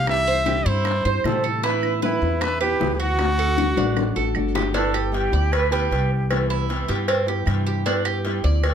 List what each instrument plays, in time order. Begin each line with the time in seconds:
Already playing: upright bass C2, cuban tres G4
0.07 nylon-string guitar C3 E3 G3 C4 E4, trumpet E5, high bongo, claves
0.27 cuban tres C5, high bongo
0.46 nylon-string guitar C3 E3 G3 C4 E4, cuban tres G4, high bongo
0.65 upright bass G2, nylon-string guitar G3 C4 E4, cuban tres E4, trumpet C5, high bongo
0.85 muted nylon-string guitar stroke, high bongo, claves
1.05 upright bass G2, nylon-string guitar G3 C4 E4, cuban tres C5, flute C5, high bongo
1.24 upright bass A2, nylon-string guitar C3 E3 G3 C4 E4, flute A4, high bongo, low bongo, claves
1.44 cuban tres A4
1.63 nylon-string guitar E3 B3 C4 E4, cuban tres E4, flute B4, high bongo
1.83 high bongo, claves
2.02 nylon-string guitar E3 B3 C4 E4, trumpet E4, cuban tres B4, high bongo
2.22 upright bass E2, nylon-string guitar B3 C4 E4, high bongo
2.41 trumpet B4, cuban tres E5, muted nylon-string guitar stroke, high bongo, claves
2.61 nylon-string guitar B3 C4 E4, trumpet G4, cuban tres B4, high bongo
2.80 upright bass D2, nylon-string guitar E3 B3 C4 E4, high bongo, low bongo
2.94 trumpet G4
2.99 trumpet F#4, cuban tres F#4
3.19 nylon-string guitar D3 A3 D4 F#4, high bongo, claves
3.38 cuban tres A4, high bongo
3.58 nylon-string guitar D3 A3 D4 F#4, cuban tres F#4, high bongo
3.76 upright bass A1, nylon-string guitar A3 D4 F#4, cuban tres D4, high bongo
3.97 muted nylon-string guitar stroke, high bongo, claves
4.16 upright bass A1, nylon-string guitar A3 D4 F#4, cuban tres A4
4.35 upright bass G1, nylon-string guitar D3 A3 D4 F#4, claves
4.55 cuban tres G4, low bongo
4.74 nylon-string guitar G3 B3 E4, cuban tres D4, flute A4, cowbell
4.94 cuban tres G4, claves
5.12 nylon-string guitar G3 B3 E4, flute G4, cowbell
5.32 upright bass D2, nylon-string guitar B3 E4, cuban tres D5
5.52 flute B4, muted nylon-string guitar stroke, cowbell, claves
5.70 nylon-string guitar B3 E4, flute G4, cuban tres B4, cowbell
5.91 upright bass C2, nylon-string guitar G3 B3 E4, cowbell
6.30 nylon-string guitar C3 E3 G3 B3 E4, cowbell, claves
6.50 cuban tres E4
6.69 nylon-string guitar C3 E3 G3 B3 E4, cowbell
6.88 upright bass G2, nylon-string guitar G3 B3 E4, cuban tres G4, cowbell
7.08 cuban tres C4, muted nylon-string guitar stroke, cowbell, claves
7.27 nylon-string guitar G3 B3 E4, cuban tres G4
7.46 upright bass G2, nylon-string guitar C3 E3 G3 B3 E4, cowbell, claves
7.67 cuban tres G4
7.86 nylon-string guitar G3 B3 E4, cuban tres D4, cowbell
8.05 cuban tres G4, claves
8.24 nylon-string guitar G3 B3 E4, cowbell
8.44 upright bass D2, nylon-string guitar B3 E4, cuban tres D5
8.63 muted nylon-string guitar stroke, cowbell, claves